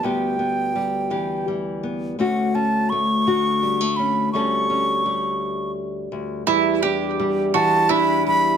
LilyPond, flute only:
\new Staff \with { instrumentName = "Flute" } { \time 6/8 \key e \dorian \tempo 4. = 56 g''2 r4 | fis''8 a''8 cis'''4. b''8 | cis'''2 r4 | r4. a''8 b''8 b''8 | }